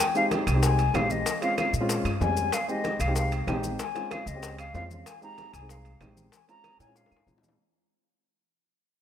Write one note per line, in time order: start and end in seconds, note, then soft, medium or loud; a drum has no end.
0.00 0.15 G5 medium
0.00 high bongo medium
0.00 high conga soft
0.00 high timbale medium
0.00 maracas medium
0.14 0.43 G#3 medium
0.14 0.43 C4 medium
0.14 0.43 D#4 medium
0.14 0.43 G4 medium
0.14 0.25 F5 medium
0.14 high bongo soft
0.14 high conga soft
0.14 maracas soft
0.31 high bongo medium
0.31 high conga medium
0.31 high timbale medium
0.31 low timbale medium
0.31 maracas soft
0.47 0.91 C2 loud
0.47 high bongo soft
0.47 high conga soft
0.47 high timbale medium
0.47 claves medium
0.47 maracas medium
0.54 0.82 G#3 medium
0.54 0.82 C4 medium
0.54 0.83 D#4 medium
0.54 0.83 G4 medium
0.63 0.96 G#5 medium
0.63 high bongo medium
0.63 maracas medium
0.79 high timbale medium
0.79 maracas soft
0.93 1.22 A#1 medium
0.93 1.25 G#3 medium
0.93 1.26 C4 medium
0.93 1.26 D#4 medium
0.93 1.26 G4 medium
0.93 1.12 F5 medium
0.93 high bongo soft
0.93 low bongo medium
0.93 high conga medium
0.93 high timbale medium
0.93 low timbale medium
0.93 claves medium
0.93 maracas soft
1.10 1.42 D#5 medium
1.10 high bongo soft
1.10 high conga medium
1.10 maracas medium
1.26 high bongo medium
1.26 high conga soft
1.26 high timbale medium
1.26 maracas medium
1.41 1.69 G#3 medium
1.41 1.70 C4 medium
1.41 1.70 C#4 medium
1.41 1.70 F4 medium
1.41 1.57 F5 loud
1.41 high bongo soft
1.41 high conga soft
1.41 high timbale medium
1.41 maracas soft
1.58 1.73 F5 medium
1.58 high bongo medium
1.58 high conga medium
1.58 high timbale medium
1.58 low timbale medium
1.58 claves medium
1.58 maracas soft
1.73 2.03 A#2 medium
1.73 high bongo soft
1.73 high conga soft
1.73 maracas medium
1.80 2.08 G#3 medium
1.80 2.09 C4 medium
1.80 2.09 C#4 medium
1.80 2.09 F4 loud
1.89 high bongo medium
1.89 high conga soft
1.89 high timbale medium
1.89 maracas medium
2.04 2.19 G2 medium
2.04 high timbale medium
2.04 claves medium
2.04 maracas soft
2.21 2.49 F2 medium
2.21 2.53 G3 medium
2.21 2.52 G#3 medium
2.21 2.53 C4 medium
2.21 2.53 C#4 medium
2.21 2.55 G#5 medium
2.21 high bongo soft
2.21 low bongo medium
2.21 high conga medium
2.21 low timbale medium
2.21 maracas soft
2.37 high bongo soft
2.37 high conga medium
2.37 maracas medium
2.52 2.68 F5 medium
2.52 high bongo medium
2.52 high conga soft
2.52 high timbale medium
2.52 claves medium
2.52 maracas medium
2.68 2.96 G#3 medium
2.68 2.96 C4 medium
2.68 2.96 D#4 medium
2.68 2.96 G4 medium
2.68 3.01 D#5 loud
2.68 high bongo soft
2.68 high conga soft
2.68 maracas soft
2.84 high bongo medium
2.84 high conga medium
2.84 high timbale medium
2.84 low timbale medium
2.84 maracas soft
3.00 3.44 C2 medium
3.00 3.16 F5 medium
3.00 high bongo soft
3.00 high conga soft
3.00 high timbale medium
3.00 claves medium
3.00 maracas medium
3.07 3.35 G#3 medium
3.07 3.35 C4 medium
3.07 3.36 D#4 medium
3.07 3.36 G4 medium
3.16 3.31 F5 medium
3.16 high bongo medium
3.16 maracas medium
3.32 high conga soft
3.32 high timbale medium
3.32 maracas soft
3.47 3.75 A#1 medium
3.47 3.79 G#3 medium
3.47 3.79 C4 medium
3.47 3.79 D#4 medium
3.47 3.79 G4 medium
3.47 high bongo soft
3.47 low bongo medium
3.47 high conga medium
3.47 high timbale medium
3.47 low timbale medium
3.47 claves medium
3.47 maracas soft
3.63 high bongo soft
3.63 high conga medium
3.63 maracas medium
3.79 4.13 G#5 medium
3.79 high bongo medium
3.79 high conga soft
3.79 high timbale medium
3.79 maracas medium
3.95 4.23 G#3 medium
3.95 4.23 C4 medium
3.95 4.23 C#4 medium
3.95 4.23 F4 medium
3.95 high bongo soft
3.95 high conga soft
3.95 high timbale medium
3.95 maracas soft
4.11 4.29 F5 medium
4.11 high bongo medium
4.11 high conga medium
4.11 high timbale medium
4.11 low timbale medium
4.11 claves medium
4.11 maracas soft
4.26 4.71 C#2 medium
4.26 4.58 D#5 medium
4.26 high bongo soft
4.26 high conga soft
4.26 maracas medium
4.34 4.62 G#3 medium
4.34 4.62 C4 medium
4.34 4.62 C#4 medium
4.34 4.63 G4 medium
4.43 high bongo medium
4.43 high timbale medium
4.43 maracas medium
4.58 4.73 F5 medium
4.58 high conga soft
4.58 high timbale medium
4.58 claves medium
4.58 maracas soft
4.74 5.02 F2 medium
4.74 5.06 G#3 medium
4.74 5.06 C4 medium
4.74 5.06 C#4 medium
4.74 5.06 F4 medium
4.74 4.84 F5 medium
4.74 high bongo soft
4.74 low bongo medium
4.74 high conga medium
4.74 low timbale medium
4.74 maracas soft
4.91 high bongo soft
4.91 high conga medium
4.91 maracas medium
5.06 5.21 G#5 medium
5.06 high bongo medium
5.06 high conga soft
5.06 high timbale medium
5.06 claves medium
5.06 maracas medium
5.21 5.49 G#3 medium
5.21 5.49 C4 medium
5.21 5.50 D#4 medium
5.21 5.50 G4 medium
5.21 5.52 A#5 loud
5.21 high bongo soft
5.21 high conga soft
5.21 maracas soft
5.38 high bongo soft
5.38 high conga medium
5.38 high timbale medium
5.38 low timbale medium
5.38 maracas soft
5.53 5.98 C2 medium
5.53 5.71 G#5 medium
5.53 high bongo soft
5.53 high conga soft
5.53 high timbale medium
5.53 claves medium
5.53 maracas medium
5.61 5.89 G#3 medium
5.61 5.89 C4 medium
5.61 5.89 D#4 medium
5.61 5.89 G#4 medium
5.69 6.01 F5 medium
5.69 high bongo medium
5.69 high conga soft
5.69 maracas medium
5.85 high conga soft
5.85 high timbale medium
5.85 maracas soft
6.00 6.28 A#1 medium
6.00 6.32 G#3 medium
6.00 6.32 C4 medium
6.00 6.33 D#4 medium
6.00 6.33 G4 medium
6.00 high bongo soft
6.00 low bongo medium
6.00 high conga medium
6.00 high timbale medium
6.00 low timbale medium
6.00 claves medium
6.00 maracas soft
6.17 high bongo soft
6.17 high conga medium
6.17 maracas medium
6.32 6.48 G#5 medium
6.32 high bongo medium
6.32 high timbale medium
6.32 maracas medium
6.48 6.76 G#3 medium
6.48 6.76 C4 medium
6.48 6.76 C#4 medium
6.48 6.76 F4 medium
6.48 6.78 A#5 loud
6.48 high bongo soft
6.48 high conga soft
6.48 high timbale medium
6.48 maracas soft
6.64 high bongo medium
6.64 high conga medium
6.64 high timbale medium
6.64 low timbale medium
6.64 claves medium
6.64 maracas soft
6.79 7.09 A#2 medium
6.79 6.98 G#5 medium
6.79 high bongo soft
6.79 high conga soft
6.79 high timbale medium
6.79 maracas medium
6.87 7.15 G#3 medium
6.87 7.15 C4 medium
6.87 7.15 C#4 medium
6.87 7.16 F4 medium
6.96 7.28 F5 medium
6.96 high bongo medium
6.96 maracas medium
7.06 high bongo medium
7.11 7.26 G#2 medium
7.11 high conga soft
7.11 claves medium
7.11 maracas soft
7.16 high bongo medium
7.27 7.55 A#2 medium
7.27 7.59 G#3 medium
7.27 7.59 C4 medium
7.27 7.59 C#4 medium
7.27 7.59 F4 medium
7.27 low bongo medium
7.27 high conga medium
7.27 maracas soft
7.38 low bongo medium
7.43 high conga medium
7.43 low timbale medium
7.43 maracas medium
7.48 low bongo medium